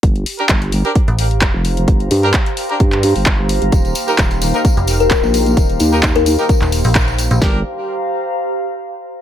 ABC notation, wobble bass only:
X:1
M:4/4
L:1/16
Q:"Swing 16ths" 1/4=130
K:Gm
V:1 name="Wobble bass" clef=bass
G,,,2 z2 G,,,3 z6 F,,,3 | G,,,2 G,,2 z4 G,,3 G,,,4 G,,, | E,,,2 z2 E,,,3 z6 B,,,3 | E,,,2 E,,2 E,,3 z8 z |
G,,,2 z12 z2 |]